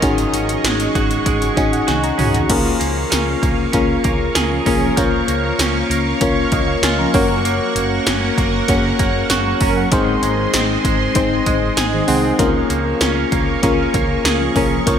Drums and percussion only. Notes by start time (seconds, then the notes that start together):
0.02 kick, closed hi-hat
0.18 closed hi-hat
0.34 closed hi-hat
0.49 closed hi-hat
0.64 snare, closed hi-hat, tambourine
0.80 closed hi-hat
0.95 kick, closed hi-hat
1.11 closed hi-hat
1.26 kick, closed hi-hat
1.42 closed hi-hat
1.57 kick, closed hi-hat
1.73 closed hi-hat
1.88 snare, closed hi-hat
2.04 closed hi-hat
2.19 mid tom, open hi-hat
2.34 closed hi-hat, floor tom
2.50 kick, closed hi-hat, crash
2.81 closed hi-hat
3.12 snare, closed hi-hat, tambourine
3.43 kick, closed hi-hat
3.73 kick, closed hi-hat
4.04 kick, closed hi-hat
4.35 snare, closed hi-hat, tambourine
4.66 kick, open hi-hat
4.97 kick, closed hi-hat
5.28 closed hi-hat
5.59 snare, closed hi-hat, tambourine
5.91 closed hi-hat
6.21 kick, closed hi-hat
6.52 kick, closed hi-hat
6.83 snare, closed hi-hat, tambourine
7.14 kick, open hi-hat
7.45 closed hi-hat
7.76 closed hi-hat
8.06 snare, closed hi-hat, tambourine
8.38 kick, closed hi-hat
8.68 kick, closed hi-hat
8.99 kick, closed hi-hat
9.30 snare, closed hi-hat, tambourine
9.61 kick, open hi-hat
9.92 kick, closed hi-hat
10.23 closed hi-hat
10.53 snare, closed hi-hat, tambourine
10.85 kick, closed hi-hat
11.15 kick, closed hi-hat
11.46 kick, closed hi-hat
11.77 snare, closed hi-hat, tambourine
12.08 open hi-hat
12.39 kick, closed hi-hat
12.70 closed hi-hat
13.01 snare, closed hi-hat, tambourine
13.32 kick, closed hi-hat
13.63 kick, closed hi-hat
13.94 kick, closed hi-hat
14.25 snare, closed hi-hat, tambourine
14.56 kick, open hi-hat
14.87 kick, closed hi-hat